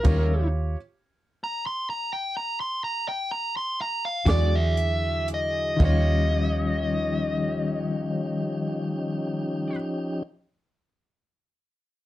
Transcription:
<<
  \new Staff \with { instrumentName = "Lead electric guitar" } { \time 12/8 \key ees \mixolydian \tempo 4. = 38 << { r4. bes''16 c'''16 bes''16 g''16 bes''16 c'''16 bes''16 g''16 bes''16 c'''16 bes''16 f''16 d''8 r4 | ees''1. | } \\ { bes'8 r1 r16 e''8. ees''8 | r1. | } >> }
  \new Staff \with { instrumentName = "Upright piano" } { \time 12/8 \key ees \mixolydian <f' g' des''>4 r2. r8 <fis' gis' d'''>4. | <f' g' des''>1. | }
  \new Staff \with { instrumentName = "Tonewheel organ" } { \time 12/8 \key ees \mixolydian <f aes d' fes''>8 r1 <d fis e' gis'>4. | <f des' ees' g'>8 <f des' ees' g'>1~ <f des' ees' g'>4. | }
  \new Staff \with { instrumentName = "Clean electric guitar" } { \time 12/8 \key ees \mixolydian <ees g des' f'>8 r1 <e gis d' fis'>8 r4 | <ees g des' f'>1. | }
  \new Staff \with { instrumentName = "Fingered electric bass" } { \clef bass \time 12/8 \key ees \mixolydian ees,4 r2. r8 e,4. | ees,1. | }
  \new DrumStaff \with { instrumentName = "Drums" } \drummode { \time 12/8 <cymc hh bd>4. r4. r4. <hh bd sn>8 hh8 hh8 | <cymc bd>4. r4. r4. r4. | }
>>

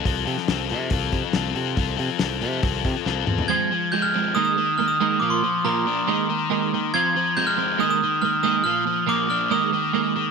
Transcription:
<<
  \new Staff \with { instrumentName = "Glockenspiel" } { \time 4/4 \key f \dorian \tempo 4 = 140 r1 | r1 | aes'''4 g'''16 f'''8. ees'''16 ees'''8. f'''16 ees'''8. | d'''16 c'''8. bes''4 r2 |
aes'''4 g'''16 f'''8. ees'''16 ees'''8. f'''8 ees'''8 | f'''4 d'''8 f'''8 ees'''4. r8 | }
  \new Staff \with { instrumentName = "Overdriven electric guitar" } { \time 4/4 \key f \dorian <f c' f' a'>8 <c' f' a'>8 <f c' f' a'>8 <c' f' a'>8 <f c' f' a'>4 <f c' f' a'>8 <c' f' a'>8 | <f c' f' a'>8 <c' f' a'>8 <f c' f' a'>8 <c' f' a'>8 <f c' f' a'>4 <f c' f' a'>8 <c' f' a'>8 | f8 f8 aes8 c'8 ees8 ees8 ees8 ees8 | f8 f8 bes8 d'8 ees8 ees8 ees8 ees8 |
f8 f8 aes8 c'8 ees8 ees8 ees8 ees8 | f8 f8 bes8 d'8 ees8 ees8 ees8 ees8 | }
  \new Staff \with { instrumentName = "Clean electric guitar" } { \clef bass \time 4/4 \key f \dorian r1 | r1 | <f aes c'>8 <f aes>8 <f aes>8 <f aes>8 <aes bes ees'>8 <aes bes>8 <aes bes>8 <aes bes ees'>8 | <bes, f bes>8 bes,8 <bes, f bes>8 bes,8 <aes bes ees'>8 <aes bes>8 <aes bes ees'>8 <aes bes>8 |
<f c' f'>8 <f c'>8 <f c'>8 <f c'>8 <aes bes ees'>8 <aes bes>8 <aes bes>8 <aes bes ees'>8 | <bes, f bes>8 <bes, f>8 <bes, f bes>8 <bes, f>8 <aes bes ees'>8 <aes bes>8 <aes bes ees'>8 <aes bes>8 | }
  \new Staff \with { instrumentName = "Fingered electric bass" } { \clef bass \time 4/4 \key f \dorian c,8 c16 r16 c,8 c8 c,8 c16 r16 c,8 c8 | c,8 c16 r16 c,8 c8 c,8 c16 r16 c,8 e,8 | r1 | r1 |
r1 | r1 | }
  \new DrumStaff \with { instrumentName = "Drums" } \drummode { \time 4/4 <hho bd>8 hho16 sn16 <hho sn>8 hho8 <hho bd>8 <hho bd>8 <hho sn>8 hho8 | <hho bd>8 hho8 <hho sn>8 hho8 <hho bd>8 <hho bd>8 sn8 toml16 tomfh16 | r4 r4 r4 r4 | r4 r4 r4 r4 |
r4 r4 r4 r4 | r4 r4 r4 r4 | }
>>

